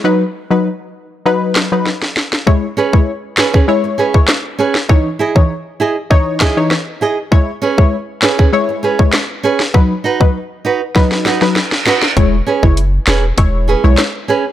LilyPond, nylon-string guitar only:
\new Staff \with { instrumentName = "Nylon-string guitar" } { \time 4/4 \key e \major \tempo 4 = 99 r1 | r8 <cis' gis' b'>16 r8. <cis' gis' b'>16 <cis' gis' b'>16 r8 <cis' gis' b'>16 r8. <cis' gis' b'>16 r16 | r8 <e' gis' dis''>16 r8. <e' gis' dis''>16 r8. <e' gis' dis''>16 r8. <e' gis' dis''>16 r16 | r8 <cis' gis' b'>16 r8. <cis' gis' b'>16 <cis' gis' b'>16 r8 <cis' gis' b'>16 r8. <cis' gis' b'>16 r16 |
r8 <dis' fis' b'>16 r8. <dis' fis' b'>16 r8. <dis' fis' b'>16 r8. <dis' fis' b'>16 r16 | r8 <cis' gis' b'>16 r8. <cis' gis' b'>16 r8. <cis' gis' b'>16 r8. <cis' gis' b'>16 r16 | }